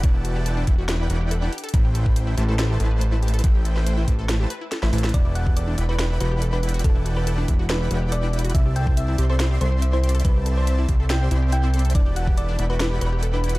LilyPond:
<<
  \new Staff \with { instrumentName = "Supersaw synth" } { \time 4/4 \key e \minor \tempo 4 = 141 <e' b' d'' fis'' g'' a''>4. <e' b' d'' fis'' g'' b''>4 <e' b' d'' fis'' g'' b''>4 r8 | <a e' b' c'' g''>4. <a e' b' c'' a''>4 <a e' b' c'' a''>4. | <a e' b' c'' g''>4. <a e' b' c'' a''>4 r8. <a e' b' c'' b''>16 <a e' b' c'' a''>8 | <e' b' d'' fis'' g'' a''>4. <e' b' d'' fis'' g'' b''>4 <e' b' d'' fis'' g'' b''>4. |
<e' b' d'' g'' a''>4. <e' b' d'' b''>4 <e' b' d'' fis'' g'' b''>4. | <c' c'' d'' e'' a''>4. <c' c'' d'' e'' c'''>4 <c' c'' d'' e'' c'''>4. | <c' c'' d'' a''>4. <c' c'' d'' e'' c'''>4 <c' c'' d'' e'' c'''>4. | <e' b' d'' fis'' g'' a''>4. <e' b' d'' fis'' g'' b''>4 <e' b' d'' fis'' g'' b''>4. | }
  \new Staff \with { instrumentName = "Synth pluck" } { \time 4/4 \key e \minor r1 | r1 | r1 | d''8 fis''8 d''8 r16 b'8 r16 b'8 r16 b'8 r16 |
a'8 r16 b'8 r8. b'8. r16 d''8. r16 | e''8 g''8 e''8 r16 c''8 r16 c''8 r16 c''8 r16 | b'8 r16 c''8 r8. g''8. r16 g''8. r16 | d''8 fis''8 d''8 r16 b'8 r16 b'8 r16 b'8 r16 | }
  \new Staff \with { instrumentName = "Synth arpeggio sound" } { \time 4/4 \key e \minor d'16 e'16 fis'16 g'16 a'16 d'16 e'16 fis'16 d'16 e'16 fis'16 g'16 a'16 d'16 g'16 a'16 | e'16 g'16 a'16 b'16 c''16 e'16 g'16 a'16 e'16 g'16 a'16 b'16 c''16 e'16 g'16 a'16 | e'16 g'16 a'16 b'16 c''16 e'16 g'16 a'16 e'16 g'16 b'16 e'16 a'16 e'16 e'16 e''16 | d'16 e'16 fis'16 g'16 a'16 d'16 e'16 fis'16 d'16 e'16 fis'16 g'16 a'16 d'16 e'16 fis'16 |
d'16 e'16 fis'16 g'16 a'16 d'16 e'16 fis'16 d'16 e'16 fis'16 g'16 a'16 d'16 e'16 fis'16 | e'16 g'16 a'16 c''16 e''16 e'16 g'16 a'16 e'16 g'16 a'16 c''16 e''16 e'16 g'16 a'16 | e'16 g'16 a'16 c''16 e''16 e'16 g'16 a'16 e'16 g'16 e'16 g'16 e'16 e'16 a'16 a'16 | d'16 g'16 fis'16 g'16 a'16 d'16 e'16 fis'16 d'16 g'16 fis'16 g'16 a'16 d'16 e'16 fis'16 | }
  \new Staff \with { instrumentName = "Analog synth bass" } { \clef bass \time 4/4 \key e \minor e,,4. e,,4 e,,4 r8 | a,,4. a,,4 a,,4. | a,,4. a,,4 r8. a,,16 a,,8 | e,,4. e,,4 e,,4. |
e,,4. e,,4 e,,4. | c,4. c,4 c,4. | c,4. c,4 c,4. | e,,4. e,,4 e,,4. | }
  \new DrumStaff \with { instrumentName = "Drums" } \drummode { \time 4/4 <hh bd>8 hh8 hh8 <hh bd>8 <hh sn>8 hh8 hh8 hh32 hh32 hh32 hh32 | <hh bd>8 hh16 bd16 hh8 hh8 <hh sn>8 hh8 hh8 hh32 hh32 hh32 hh32 | <hh bd>8 hh16 sn16 hh8 <hh bd>8 <hh sn>8 hh8 <hh sn>16 sn16 hho32 hh32 <hh sn>32 hh32 | <hh bd>8 hh16 bd16 hh8 hh8 <hh sn>8 hh8 hh8 hh32 hh32 hh32 hh32 |
<hh bd>8 hh8 hh8 <hh bd>8 <hh sn>8 hh8 hh8 hh32 hh32 hh32 hh32 | <hh bd>8 hh16 bd16 hh8 hh8 <hh sn>8 hh8 hh8 hh32 hh32 hh32 hh32 | <hh bd>8 hh8 hh8 <hh bd>8 <hh sn>8 hh8 hh8 hh32 hh32 hh32 hh32 | <hh bd>8 hh16 bd16 hh8 hh8 <hh sn>8 hh8 hh8 hh32 hh32 hh16 | }
>>